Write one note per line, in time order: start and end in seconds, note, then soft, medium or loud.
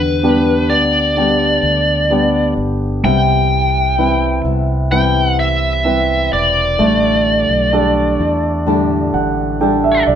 0.00 0.70 E2 medium
0.00 3.00 D3 medium
0.00 0.23 G3 soft
0.00 0.23 B3 soft
0.00 0.23 G4 soft
0.00 0.73 B4 medium
0.23 0.70 D3 soft
0.23 0.70 G3 soft
0.23 1.14 B3 soft
0.23 0.70 B3 soft
0.23 1.14 D4 soft
0.23 1.14 G4 soft
0.23 0.68 G4 medium
0.70 1.60 D2 medium
0.70 1.16 G3 soft
0.70 1.16 B3 soft
0.70 1.17 G4 soft
0.70 2.53 D5 medium
1.16 2.09 D3 medium
1.16 2.11 G3 medium
1.16 2.08 B3 soft
1.16 2.11 B3 medium
1.16 2.08 D4 soft
1.16 2.08 G4 soft
1.16 2.12 G4 medium
1.63 2.53 D2 medium
2.10 3.04 D3 soft
2.10 3.04 G3 medium
2.10 3.01 B3 soft
2.10 3.04 B3 medium
2.10 3.01 D4 soft
2.10 3.02 G4 soft
2.10 3.05 G4 medium
2.57 3.01 G1 medium
3.04 4.41 C2 medium
3.04 3.98 C3 medium
3.04 6.75 C3 medium
3.04 3.97 E3 medium
3.04 3.98 G3 medium
3.04 3.98 B3 medium
3.04 3.99 E4 medium
3.04 4.41 G5 medium
3.97 4.45 E3 medium
3.97 4.45 G3 medium
3.97 4.44 B3 soft
3.97 4.89 C4 soft
3.97 4.89 E4 soft
3.97 4.43 E4 medium
3.97 4.89 B4 soft
4.44 6.28 C2 medium
4.44 4.91 G3 soft
4.44 4.91 B3 soft
4.44 4.91 E4 soft
4.91 5.85 C3 medium
4.91 5.85 E3 medium
4.91 5.86 G3 medium
4.91 5.86 B3 medium
4.91 5.82 C4 soft
4.91 5.83 E4 soft
4.91 5.87 E4 medium
4.91 5.83 B4 soft
4.91 5.35 G5 medium
5.40 6.33 E5 medium
5.85 6.79 E3 soft
5.85 6.79 G3 soft
5.85 6.79 B3 medium
5.85 6.76 C4 soft
5.85 6.76 E4 soft
5.85 6.80 E4 soft
5.85 6.76 B4 soft
6.32 6.76 E1 medium
6.32 10.04 D5 medium
6.79 7.46 A1 medium
6.79 7.73 A2 medium
6.79 7.71 D3 medium
6.79 7.73 G3 medium
6.79 10.15 A3 medium
6.79 7.73 D4 medium
6.79 7.75 E4 medium
7.49 8.16 B1 medium
7.72 8.20 D3 medium
7.72 8.20 G3 medium
7.72 8.64 D4 soft
7.72 8.19 D4 medium
7.72 8.18 E4 medium
7.72 8.64 G4 soft
7.72 8.64 A4 soft
8.19 9.09 E2 medium
8.19 8.66 G3 soft
8.19 8.67 D4 soft
8.19 8.67 E4 soft
8.67 9.60 A2 medium
8.67 9.59 D3 medium
8.67 9.61 G3 medium
8.67 9.58 D4 soft
8.67 9.61 D4 medium
8.67 9.62 E4 medium
8.67 9.58 G4 soft
8.67 9.58 A4 soft
9.14 10.04 A1 medium
9.14 9.57 F#5 medium
9.60 10.15 D3 medium
9.60 10.15 G3 medium
9.60 10.15 D4 soft
9.60 10.15 D4 medium
9.60 10.15 E4 medium
9.60 10.15 G4 soft
9.60 10.15 A4 soft
9.60 9.83 G5 medium
9.84 10.06 E5 medium
10.07 10.15 B1 medium
10.07 10.15 D5 medium